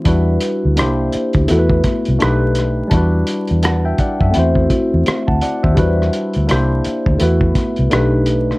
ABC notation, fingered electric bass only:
X:1
M:4/4
L:1/16
Q:"Swing 16ths" 1/4=84
K:Em
V:1 name="Fingered electric bass" clef=bass
E,,2 z D,, C,,2 z D,, E,,2 z C,, B,,,4 | E,,2 z E,,3 z F,, E,,2 z E,, z D,, z ^D,, | E,,2 z D,, C,,2 z D,, E,,2 z C,, B,,,4 |]